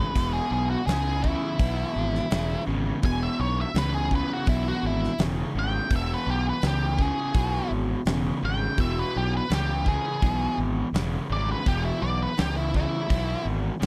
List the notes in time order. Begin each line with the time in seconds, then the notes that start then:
Already playing: E2 C#3 B4
0.15 E1 E2 B2, kick, open hi-hat, splash
0.33 G#4
0.51 B1 G#4
0.70 F#4
0.87 C#2 E2 C#3 G#4, snare, open hi-hat
1.23 E2 C#3 E4, kick
1.59 B1 E2 B2, kick, open hi-hat
1.96 G#1
2.15 snare
2.31 E1 E2 C#3, snare, open hi-hat
2.66 G#1 E2 C#3
3.02 E1 E2 B2 G#5, kick, open hi-hat
3.23 E5
3.39 B1 C#5
3.61 E5
3.74 C#2 E2 C#3, snare, open hi-hat
3.78 B4
3.94 G#4
4.11 E2 C#3, kick
4.15 B4
4.34 F#4
4.46 B1 E2 B2 E4, kick, open hi-hat
4.68 F#4
4.83 G#1 E4
5.04 snare
5.18 E1 E2 C#3, snare, open hi-hat
5.54 G#1 E2 C#3
5.59 G5
5.90 E1 E2 B2, kick, open hi-hat
5.96 E5
6.14 B4
6.27 B1 G4
6.49 B4
6.62 C#2 E2 C#3, snare, open hi-hat
6.67 G4
6.99 E2 C#3 G#4, kick
7.34 B1 E2 B2, kick, open hi-hat
7.71 G#1
8.06 E1 E2 C#3, snare, open hi-hat
8.43 G#1 E2 C#3 G5
8.77 E1 E2 B2 E5, kick, open hi-hat
8.99 B4
9.16 B1 G4
9.37 B4
9.50 C#2 E2 C#3, snare, open hi-hat
9.54 G4
9.86 E2 C#3 G#4, kick
10.22 B1 E2 B2, kick, open hi-hat
10.58 G#1
10.92 E1 E2 C#3, snare, open hi-hat
11.29 G#1 E2 C#3 D5
11.52 B4
11.66 E1 E2 B2 G4, kick, open hi-hat
11.85 E4
12.02 B1 D5
12.23 B4
12.37 C#2 E2 C#3 G4, snare, open hi-hat
12.57 E4
12.74 E2 C#3 E4, kick
13.09 B1 E2 B2, kick, open hi-hat
13.45 G#1
13.80 E1 E2 C#3, open hi-hat